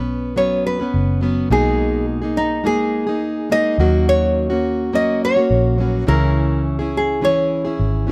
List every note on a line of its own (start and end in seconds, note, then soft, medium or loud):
0.00 0.90 B1 medium
0.00 0.36 B3 soft
0.00 0.36 C#4 soft
0.00 0.37 B4 medium
0.36 0.79 F#3 soft
0.36 0.80 B3 medium
0.36 0.80 C#4 medium
0.36 0.78 B4 medium
0.36 0.66 C#5 medium
0.67 1.48 B4 medium
0.80 1.21 B3 soft
0.80 1.22 C#4 soft
0.80 1.23 B4 soft
0.94 1.47 F#1 medium
1.21 1.50 F#3 medium
1.21 1.51 B3 medium
1.21 1.51 C#4 medium
1.21 1.52 B4 medium
1.50 3.21 B1 medium
1.50 2.22 B2 medium
1.50 2.23 G#3 medium
1.50 2.24 A#3 medium
1.50 2.23 D#4 medium
1.50 2.20 G#4 medium
1.50 2.05 G#4 medium
2.22 2.63 A#3 soft
2.22 2.64 D#4 soft
2.22 2.65 G#4 soft
2.37 2.64 D#4 medium
2.64 3.07 G#3 medium
2.64 3.08 A#3 medium
2.64 3.07 D#4 medium
2.64 3.06 G#4 medium
2.64 3.52 G#4 medium
3.07 3.50 A#3 soft
3.07 3.51 D#4 soft
3.07 3.50 G#4 medium
3.21 3.75 D#2 medium
3.50 3.79 G#3 medium
3.50 3.79 A#3 medium
3.50 3.80 D#4 medium
3.50 3.80 G#4 medium
3.50 4.08 D#5 loud
3.78 5.46 D#2 medium
3.78 4.51 D#3 medium
3.78 4.51 F#3 medium
3.78 4.52 A#3 medium
3.78 4.51 C#4 medium
3.78 4.49 F#4 medium
4.09 4.95 C#5 loud
4.50 4.92 A#3 soft
4.50 4.93 C#4 soft
4.50 4.93 F#4 medium
4.93 5.36 F#3 medium
4.93 5.37 A#3 medium
4.93 5.36 C#4 medium
4.93 5.35 F#4 medium
4.93 5.21 D#5 medium
5.25 5.83 C#5 medium
5.36 5.78 A#3 soft
5.36 5.79 C#4 soft
5.36 5.79 F#4 medium
5.50 6.04 A#1 medium
5.78 6.07 F#3 soft
5.78 6.07 A#3 medium
5.78 6.07 C#4 medium
5.78 6.08 F#4 medium
5.83 6.05 B4 medium
6.07 7.75 C#2 medium
6.07 6.79 C#3 medium
6.07 6.79 E3 medium
6.07 6.81 C#4 medium
6.07 6.79 E4 medium
6.07 6.78 G#4 medium
6.07 6.61 A#4 medium
6.79 7.21 C#4 soft
6.79 7.22 E4 soft
6.79 7.22 G#4 medium
6.97 7.22 G#4 medium
7.22 7.65 E3 medium
7.22 7.65 C#4 medium
7.22 7.65 E4 medium
7.22 7.63 G#4 medium
7.22 8.10 C#5 medium
7.65 8.07 C#4 soft
7.65 8.08 E4 soft
7.65 8.08 G#4 medium
7.79 8.12 G#1 medium
8.07 8.12 E3 soft
8.07 8.12 C#4 soft